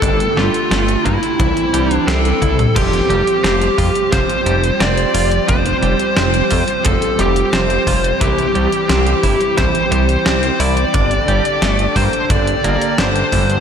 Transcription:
Already playing: G4 A4
0.02 G1 D3 A3, kick, closed hi-hat
0.20 closed hi-hat
0.37 G1 G3 F4, snare
0.54 closed hi-hat
0.71 G1 A3, snare, closed hi-hat
0.88 closed hi-hat
1.05 G2 A#3 E4, kick, closed hi-hat
1.23 closed hi-hat
1.39 C2 E3 G3 C4, kick, closed hi-hat
1.57 closed hi-hat
1.74 C2 G3, closed hi-hat
1.91 D4, closed hi-hat
2.08 C2 C4 A4, snare, closed hi-hat
2.25 closed hi-hat
2.42 C2 E4, kick, closed hi-hat, high tom
2.59 closed hi-hat, mid tom
2.75 F1 F3 G3 C4 G4, kick, closed hi-hat, crash
2.93 closed hi-hat
3.10 F1 G3, closed hi-hat
3.27 closed hi-hat
3.44 F1 C4, snare, closed hi-hat
3.62 closed hi-hat
3.78 F2 F4, kick, open hi-hat
3.95 closed hi-hat
4.12 F1 F3 C5, kick, snare, closed hi-hat
4.29 closed hi-hat
4.46 F1 G3, closed hi-hat
4.64 closed hi-hat
4.80 F1 C4 D5, snare, closed hi-hat
4.97 closed hi-hat
5.14 F1 F4, open hi-hat
5.32 closed hi-hat
5.48 F1 F3 C5, kick, closed hi-hat
5.66 closed hi-hat
5.83 F1 G3, closed hi-hat
5.99 closed hi-hat
6.17 F1 C4 C5, snare, closed hi-hat
6.34 closed hi-hat
6.51 F2 F4, kick, open hi-hat
6.68 closed hi-hat
6.85 F1 F3 A4, kick, closed hi-hat
7.02 closed hi-hat
7.19 F1 G3 G4, closed hi-hat
7.36 closed hi-hat
7.53 F1 C4 C5, snare, closed hi-hat
7.70 closed hi-hat
7.87 F1 F4, kick, open hi-hat
8.04 closed hi-hat
8.21 C2 E3 G4, kick, closed hi-hat
8.38 closed hi-hat
8.55 C2 G3, closed hi-hat
8.72 closed hi-hat
8.89 C2 C4, snare, closed hi-hat
9.07 closed hi-hat
9.23 G1 E4, kick, open hi-hat
9.41 closed hi-hat
9.57 C2 E3 C5, kick, snare, closed hi-hat
9.75 closed hi-hat
9.92 C2 G3 C5, closed hi-hat
10.09 closed hi-hat
10.26 C2 C4, snare, closed hi-hat
10.43 closed hi-hat
10.60 C2 E4 D5, open hi-hat
10.77 closed hi-hat
10.94 G1 D3 A4, kick, closed hi-hat
11.11 closed hi-hat
11.28 G1 G3, closed hi-hat
11.45 closed hi-hat
11.62 G1 A3, snare, closed hi-hat
11.79 closed hi-hat
11.96 G2 A#3 C5, kick, open hi-hat
12.13 closed hi-hat
12.30 G1 D3 D5, kick, closed hi-hat
12.47 closed hi-hat
12.64 G1 A#3, closed hi-hat
12.82 closed hi-hat
12.98 G1 D3 C5, snare, closed hi-hat
13.16 closed hi-hat
13.32 G1 D3, kick, open hi-hat
13.50 closed hi-hat

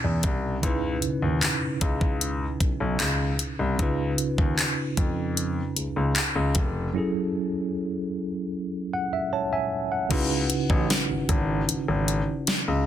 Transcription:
Already playing: B2 C#4 D#4 E4 B4
0.04 E2
0.23 C2, kick, closed hi-hat
0.62 C#2 C#3 C#4 D#4 E4, kick, closed hi-hat
0.66 B4
1.02 closed hi-hat
1.22 D#2
1.43 clap, closed hi-hat
1.81 C#2, kick, closed hi-hat
2.01 kick
2.21 closed hi-hat
2.60 B1, kick, closed hi-hat
2.80 B1
3.00 C#2, clap, closed hi-hat
3.39 closed hi-hat
3.59 C2
3.78 C#2 C#3 C#4 D#4 F4, kick, closed hi-hat
3.82 B4
4.18 closed hi-hat
4.38 D#2, kick
4.59 clap, closed hi-hat
4.97 F2, kick, closed hi-hat
5.37 closed hi-hat
5.76 C#2, closed hi-hat
5.96 C#2
6.16 clap, closed hi-hat
6.35 C#2
6.55 F1, kick, closed hi-hat
6.93 F#3 C#4 E4 G#4
6.98 A4
8.93 F#5
9.13 E5
9.33 C#5 A5
9.53 E5 G#5
9.92 F#5
10.09 C#2 C#3 C#4 D#4 E4 F#4, kick, closed hi-hat, crash
10.14 B4
10.50 closed hi-hat
10.70 A1, kick
10.90 snare, closed hi-hat
11.09 G#1
11.29 G#1, kick, closed hi-hat
11.69 G#1, closed hi-hat
11.88 G#1
12.08 closed hi-hat
12.47 snare, closed hi-hat
12.68 C#2

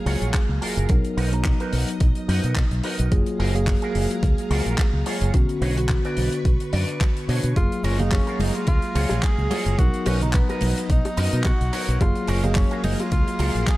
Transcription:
Already playing: F#3 A#3 G#4 F5 A#5, impact
0.06 C#2 F4 F#4 G#4 C#5, open hi-hat
0.22 A#1, closed hi-hat
0.34 kick, clap, closed hi-hat
0.49 C#2
0.61 F4 F#4 G#4 A#4, open hi-hat
0.77 F#1, closed hi-hat
0.89 B1 F#3 B3 D#4 A#4 D#5, kick, closed hi-hat
1.05 closed hi-hat
1.17 B1 D#4 F#4 A#4 B4, open hi-hat
1.32 F#3 B3 D#4 A#5, closed hi-hat
1.45 kick, clap, closed hi-hat
1.60 D#4 F#4 A#4 B4, closed hi-hat
1.73 B1, open hi-hat
1.89 closed hi-hat
2.00 B1, kick, closed hi-hat
2.15 closed hi-hat
2.28 F#2 D#4 F#4 A#4 B4, open hi-hat
2.44 B2, closed hi-hat
2.55 kick, clap, closed hi-hat
2.71 B1, closed hi-hat
2.83 D#4 F#4 A#4 B4, open hi-hat
2.99 B1, closed hi-hat
3.11 F#1 F#3 A#3 F4 G#4 F5 A#5, kick, closed hi-hat
3.26 closed hi-hat
3.39 F#1 F4 F#4 G#4 A#4, open hi-hat
3.54 F#3 A#3 G#4 F5, closed hi-hat
3.67 kick, clap, open hi-hat
3.82 F4 F#4 G#4 A#4, closed hi-hat
3.95 F#1, open hi-hat
4.11 closed hi-hat
4.23 C#2, kick, closed hi-hat
4.38 closed hi-hat
4.50 C#2 F4 F#4 G#4 A#4, open hi-hat
4.66 A#1, closed hi-hat
4.78 kick, clap, closed hi-hat
4.93 C#2
5.06 F4 F#4 G#4 C#5, open hi-hat
5.21 F#1, closed hi-hat
5.34 B1 D3 B3 C#4 F#4 B4 C#6, kick, closed hi-hat
5.49 closed hi-hat
5.62 B1 D4 F#4 B4 C#5, open hi-hat
5.76 D3 B3 F#4, closed hi-hat
5.89 muted clean electric guitar stroke, kick, clap, closed hi-hat
6.05 D4 F#4 B4 D5, closed hi-hat
6.17 B1, open hi-hat
6.32 closed hi-hat
6.45 B1, kick, closed hi-hat
6.60 closed hi-hat
6.73 F#2 D4 F#4 B4 D5, open hi-hat
6.89 closed hi-hat
7.00 kick, clap, closed hi-hat
7.17 closed hi-hat
7.28 B2 D4 F#4 B4 C#5, open hi-hat
7.43 B2, closed hi-hat
7.56 F#1 F#3 A#3 F4 G#4 F5 A#5, kick, closed hi-hat, high bongo, cabasa
7.72 closed hi-hat, cabasa
7.84 F#1 C#4 F4 F#4 G#4 A#4, open hi-hat, ride, cabasa
7.99 F#3 A#3 D#4 G#4 F5, closed hi-hat, low conga, cabasa
8.12 C#4, muted clean electric guitar stroke, kick, clap, open hi-hat, high bongo, cabasa
8.27 F4 F#4 G#4 A#4, closed hi-hat, cabasa
8.39 F#1 D#4, open hi-hat, ride, high conga, cabasa
8.55 F4, closed hi-hat, high bongo, cabasa
8.67 C#2 F4, kick, closed hi-hat, cabasa
8.82 closed hi-hat, cabasa
8.95 C#2 F4 F#4 G#4 C#5, open hi-hat, ride, cabasa
9.09 A#1, closed hi-hat, high bongo, cabasa
9.23 G#4, kick, clap, closed hi-hat, cabasa
9.38 C#2, cabasa
9.50 F4 F#4 G#4 C#5, open hi-hat, ride, high bongo, high conga, cabasa
9.66 F#1, closed hi-hat, cabasa
9.78 B1 F#3 B3 D#4 F#4 A#4 D#5, kick, closed hi-hat, cabasa
9.94 closed hi-hat, cabasa
10.06 B1 C#4 D#4 F#4 A#4 B4, open hi-hat, ride, high bongo, cabasa
10.21 F#3 B3 D#4 A#5, closed hi-hat, low conga, cabasa
10.33 B3, kick, clap, closed hi-hat, cabasa
10.49 D#4 F#4 A#4 B4, closed hi-hat, high bongo, cabasa
10.61 B1, open hi-hat, ride, high conga, cabasa
10.77 closed hi-hat, cabasa
10.89 B1 D#4, kick, closed hi-hat, cabasa
11.05 closed hi-hat, high bongo, cabasa
11.17 F#2 D#4 F#4 A#4 B4 A#5, open hi-hat, ride, cabasa
11.33 B2, closed hi-hat, cabasa
11.44 F#4 F#5, kick, clap, closed hi-hat, high bongo, cabasa
11.61 B1, closed hi-hat, cabasa
11.73 D#4 F#4 A#4 B4 C#5, open hi-hat, ride, cabasa
11.89 B1, closed hi-hat, cabasa
12.00 F#1 F#3 A#3 F4 G#4 F5 A#5, kick, closed hi-hat, high bongo, cabasa
12.15 closed hi-hat, cabasa
12.28 F#1 C#4 F4 F#4 G#4 A#4, open hi-hat, ride, cabasa
12.43 F#3 A#3 D#4 G#4 F5, closed hi-hat, high bongo, low conga, cabasa
12.55 C#4, kick, clap, open hi-hat, cabasa
12.71 F4 F#4 G#4 A#4, closed hi-hat, cabasa
12.84 F#1 D#4, open hi-hat, ride, high conga, cabasa
13.00 F4, closed hi-hat, high bongo, cabasa
13.12 C#2 F4, kick, closed hi-hat, cabasa
13.27 closed hi-hat, cabasa
13.39 C#2 F4 F#4 G#4 A#4, open hi-hat, ride, high bongo, cabasa
13.55 A#1, closed hi-hat, cabasa
13.67 G#4, kick, clap, closed hi-hat, cabasa

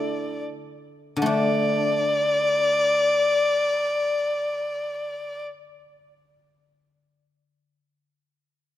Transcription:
Already playing: D3 D4 E4 A4 D5
1.17 D3
1.22 A3
1.26 D4 D5

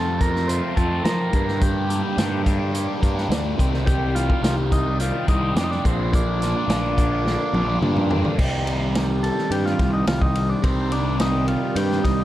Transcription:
Already playing: F2 C3 F3 A3 C4 F4 A4
0.18 F3 A3 C4 F4 A#4, kick, closed hi-hat
0.33 F3 A3 C4 F4, snare
0.46 F3 A3 C4 F4 C5, closed hi-hat
0.75 F2 F3 A3 C4 F4 A4, kick, closed hi-hat
0.89 F3 A3 C4 F4
1.04 F2 C3 F3 A3 C4 F4 A#4, snare, closed hi-hat
1.32 G2 D3 G3 A#3 D4 G4, kick, closed hi-hat
1.46 G3 A#3 D4 G4, snare
1.59 G2 D3 G3 A#3 D4 G4, kick, closed hi-hat
1.88 G3 A#3 D4 G4, closed hi-hat
2.02 G3 A#3 D4 G4
2.17 G2 D3 G3 A#3 D4 G4, snare, closed hi-hat
2.44 G3 A#3 D4 G4, kick, closed hi-hat
2.59 G3 A#3 D4 G4
2.73 G3 A#3 D4 G4, closed hi-hat
3.00 G2 G3 A#3 D4 G4, kick, closed hi-hat
3.15 G3 A#3 D4 G4, snare
3.29 D2 G2 D3 G3 A#3 D4 G4, snare, closed hi-hat
3.57 C2 C3 D#3 G3 C4 G4, kick, closed hi-hat
3.72 G3 C4 G4, snare
3.85 C3 D#3 G3 C4 G4, kick, closed hi-hat
4.14 D#3 G3 C4 F4 G4, snare, closed hi-hat
4.28 G3 C4 G4, kick
4.42 C2 C3 D#3 G3 C4 F4 G4, snare, closed hi-hat
4.71 D#3 G3 C4 D#4 G4, kick, closed hi-hat
4.85 G3 C4 G4
4.99 D#3 G3 C4 F4 G4, closed hi-hat
5.27 C2 D#3 G3 C4 D#4 G4, kick, closed hi-hat
5.42 G3 C4 G4
5.55 F2 C3 D#3 G3 C4 D4 G4, snare, closed hi-hat
5.64 D#4
5.70 D4, snare
5.84 A#1 A#2 D3 A#3 C4 D4 F4, kick, closed hi-hat
5.98 A#3 D4 F4
6.11 A#2 D3 A#3 D4 F4, kick, closed hi-hat
6.40 D3 A#3 D4 F4, snare, closed hi-hat
6.55 A#3 D4 F4
6.68 A#1 A#2 D3 A#3 D4 F4, snare, closed hi-hat
6.96 D3 A#3 D4 F4, kick, closed hi-hat
7.10 A#3 D4 F4
7.25 D3 A#3 D4 F4, snare
7.53 A#1 D3 A#3 D4 F4, high tom
7.67 A#3 D4 F4
7.81 G2 A#2 D3 A#3 D4 F4, mid tom
7.96 mid tom
8.10 D3 A#3 D4 F4, floor tom
8.23 A#3 D4 F4, floor tom
8.37 C2 C3 D#3 G3 D#4 G4, kick, crash
8.67 ride
8.95 snare, ride
9.23 A4, ride
9.38 snare
9.51 G2 G4, ride
9.65 F4, snare
9.79 C2, kick, snare, ride
9.93 D#4
10.07 C2 F4, snare, ride
10.21 D#4, kick
10.35 ride
10.49 D4
10.62 C2 C3 D#3 G3 C4 D#4 G4, kick, ride
10.92 D4, ride
11.20 D#4, snare, ride
11.48 F4, ride
11.75 G2 G4, ride
11.91 snare
12.04 C2 D#4, kick, snare, ride

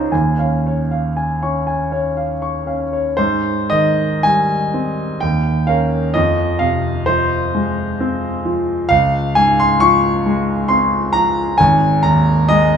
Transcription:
Already playing: C#4 D#4 C5 D#5 F5 C6
0.12 D#2 G#5
0.39 C#4 F5
0.66 C#5
0.91 F5
1.17 G#5
1.43 C#4 C#6
1.67 G#5
1.92 C#4 C#5
2.17 F5
2.42 C#6
2.67 C#4 F5
2.93 C#5
3.17 G#2 C5
3.70 D#3 D#5
4.23 G3 G#5
4.74 C4
5.20 D#2 G5
5.67 C#4 A#4 F5
6.14 F2 D#5
6.59 C3 F5
7.06 F3 C5
7.55 G#3
8.00 C4
8.45 F3
8.89 C#2 F5
9.35 G#2 G#5
9.60 C6
9.80 F3 C#6
10.26 G#3
10.68 C4 C6
11.13 F3 A#5
11.58 G#1 G#5
12.03 D#2 A#5
12.49 G#3 D#5

